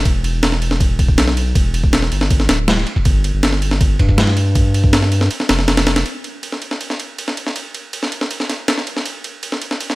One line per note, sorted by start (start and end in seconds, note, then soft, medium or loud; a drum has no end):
0.05 1.17 E1 loud
0.05 kick loud
0.05 ride medium
0.24 ride medium
0.43 snare loud
0.43 ride medium
0.52 snare soft
0.62 ride medium
0.71 snare medium
0.80 kick loud
0.80 ride medium
0.99 kick medium
0.99 ride medium
1.08 kick medium
1.18 1.54 B1 medium
1.18 snare loud
1.18 ride medium
1.28 snare medium
1.37 ride medium
1.55 2.10 E1 loud
1.55 kick loud
1.55 ride medium
1.74 ride medium
1.84 kick loud
1.93 snare loud
1.93 ride medium
2.02 snare soft
2.12 2.48 G1 medium
2.12 ride medium
2.21 snare medium
2.31 kick loud
2.31 ride medium
2.40 snare soft
2.49 2.85 D1 medium
2.49 snare loud
2.49 ride medium
2.68 snare loud
2.68 ride medium
2.77 snare soft
2.87 ride medium
2.96 kick medium
3.05 3.32 G1 medium
3.05 kick loud
3.05 ride medium
3.24 ride medium
3.34 3.98 G1 loud
3.43 snare loud
3.43 ride medium
3.53 snare soft
3.62 ride medium
3.71 snare medium
3.81 kick loud
3.81 ride medium
3.99 5.29 G2 medium
3.99 kick medium
3.99 ride medium
4.09 kick medium
4.18 snare loud
4.18 ride medium
4.27 snare medium
4.37 ride medium
4.55 kick loud
4.55 ride medium
4.74 ride medium
4.84 kick loud
4.93 snare loud
4.93 ride medium
5.02 snare soft
5.12 ride medium
5.21 snare medium
5.31 ride medium
5.40 snare soft
5.49 6.04 F1 loud
5.49 snare loud
5.49 ride medium
5.59 snare soft
5.68 snare loud
5.68 ride medium
5.77 snare loud
5.77 ride medium
5.87 snare loud
5.87 ride medium
5.96 snare loud
5.96 ride medium
6.06 ride medium
6.24 ride medium
6.43 ride medium
6.52 snare soft
6.62 ride medium
6.71 snare soft
6.81 ride medium
6.90 snare soft
7.00 ride medium
7.18 ride medium
7.28 snare soft
7.37 ride medium
7.47 snare soft
7.56 ride medium
7.74 ride medium
7.93 ride medium
8.03 snare soft
8.12 ride medium
8.21 snare medium
8.31 ride medium
8.40 snare soft
8.49 snare soft
8.49 ride medium
8.68 snare medium
8.68 ride medium
8.78 snare soft
8.87 ride medium
8.97 snare soft
9.06 ride medium
9.24 ride medium
9.43 ride medium
9.52 snare soft
9.62 ride medium
9.71 snare soft
9.80 ride medium
9.90 snare soft